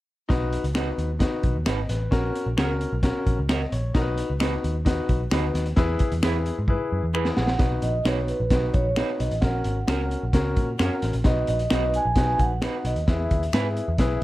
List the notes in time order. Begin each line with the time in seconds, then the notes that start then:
0.29 B1 D#4 F#4 B4, kick, snare, closed hi-hat
0.53 closed hi-hat
0.64 C#2, closed hi-hat
0.74 D#4 F#4 B4, finger snap, snare, closed hi-hat
0.98 D#2, closed hi-hat
1.19 D#4 F#4 B4, kick, snare, closed hi-hat
1.43 B1, kick, closed hi-hat
1.55 D#2
1.66 G#1 D#4 F#4 B4 D#5, finger snap, snare, closed hi-hat
1.89 A1 B4, snare, closed hi-hat
2.11 A#1 C#4 F#4 A#4, kick, snare, closed hi-hat
2.35 closed hi-hat
2.46 A#1
2.57 C#2 C#4 F#4 G#4 A#4, finger snap, snare, closed hi-hat
2.64 A#4
2.81 closed hi-hat
2.93 B1
3.03 C#4 F#4 A#4, kick, snare, closed hi-hat
3.27 A#1, kick, closed hi-hat
3.39 C#2
3.49 C#4 F#4 A#4 D#5, finger snap, snare, closed hi-hat
3.72 A#1 C#5, closed hi-hat
3.94 B1 D#4 F#4 A#4, kick, snare, closed hi-hat
4.02 B4
4.18 closed hi-hat
4.30 C#2
4.40 D#4 F#4 B4, finger snap, snare, closed hi-hat
4.64 D#2, closed hi-hat
4.85 D#4 F#4 B4, kick, snare, closed hi-hat
5.09 B1, kick, closed hi-hat
5.31 D2 D#4 F#4 B4, finger snap, snare, closed hi-hat
5.54 D#2, snare, closed hi-hat
5.66 closed hi-hat
5.76 E2 E4 G#4 B4, kick, snare, closed hi-hat
5.99 kick, closed hi-hat
6.12 E2, closed hi-hat
6.23 E2 E4 G#4 B4, finger snap, snare, closed hi-hat
6.46 closed hi-hat
6.59 G#2
6.68 E4 G#4 B4, kick
6.92 F#2
7.04 E2
7.14 E4 G#4 B4, finger snap
7.25 snare
7.37 A#1 F#5, snare
7.47 snare
7.58 B1 D#4 F#4 B4, kick, snare, closed hi-hat
7.82 A#1 D#5, closed hi-hat
8.05 B1 D#4 F#4 B4 C#5, finger snap, snare, closed hi-hat
8.28 B4, closed hi-hat
8.40 A#1
8.50 B1 D#4 F#4 B4, kick, snare, closed hi-hat
8.74 A#1 C#5, kick, closed hi-hat
8.96 D#4 F#4 B4, finger snap, snare, closed hi-hat
9.20 B1 D#5, closed hi-hat
9.31 A1, closed hi-hat
9.41 A#1 C#4 F#4 A#4 F#5, kick, snare, closed hi-hat
9.64 G#1, closed hi-hat
9.87 C#2 C#4 F#4 A#4, finger snap, snare, closed hi-hat
10.11 closed hi-hat
10.23 A#1
10.33 C#2 C#4 F#4 A#4, kick, snare, closed hi-hat
10.56 A#2, kick, closed hi-hat
10.79 F#2 C#4 F#4 A#4, finger snap, snare, closed hi-hat
11.02 A1, snare, closed hi-hat
11.13 A#1, closed hi-hat
11.24 B1 D#4 F#4 B4 D#5, kick, snare, closed hi-hat
11.47 A#1 D#5, closed hi-hat
11.59 closed hi-hat
11.70 B1 D#4 F#4 B4, finger snap, snare, closed hi-hat
11.94 G#5, closed hi-hat
12.05 A#1
12.15 B1 D#4 F#4 B4, kick, snare, closed hi-hat
12.39 A#1 F#5, kick, closed hi-hat
12.61 D#4 F#4 B4, finger snap, snare, closed hi-hat
12.85 B1 D#5, closed hi-hat
12.96 D#2, closed hi-hat
13.07 E2 E4 G#4 B4 E5, kick, snare, closed hi-hat
13.31 D#2, kick, closed hi-hat
13.43 closed hi-hat
13.53 G#2 E4 G#4 B4, finger snap, snare, closed hi-hat
13.77 closed hi-hat
13.88 E2
13.98 B1 E4 G#4 B4, kick, snare, closed hi-hat